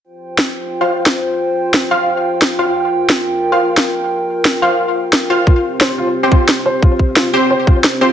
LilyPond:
<<
  \new Staff \with { instrumentName = "Synth stab" } { \time 4/4 \key c \phrygian \tempo 4 = 177 r2 r16 <f' c'' f''>16 r4. | r4. <f' c'' f''>2 <f' c'' f''>16 r16 | r2 r16 <f' c'' f''>16 r4. | r4. <f' c'' f''>2 <f' c'' f''>16 r16 |
r2 r16 <c' g' c''>16 r4. | r4. <c' g' c''>2 <c' g' c''>16 r16 | }
  \new Staff \with { instrumentName = "Analog synth pad" } { \time 4/4 \key c \phrygian << { <f' g''>1~ | <f' g''>1~ | <f' g''>1~ | <f' g''>1 |
<c' c''>1~ | <c' c''>1 | } \\ { c''1~ | c''1 | bes'1~ | bes'1 |
g'1~ | g'1 | } >> }
  \new Staff \with { instrumentName = "Felt piano" } { \time 4/4 \key c \phrygian r1 | r1 | r1 | r1 |
f'16 r8. c''8 f'16 r8. f'16 r8. c''8 | f'16 r8. f'16 r8. c''8 f'16 r8. f'16 r16 | }
  \new DrumStaff \with { instrumentName = "Drums" } \drummode { \time 4/4 r4 sn4 r4 sn4 | r4 sn4 r4 sn4 | r4 sn4 r4 sn4 | r4 sn4 r4 sn4 |
bd4 sn4 r8 bd8 sn4 | bd8 bd8 sn4 r8 bd8 sn4 | }
>>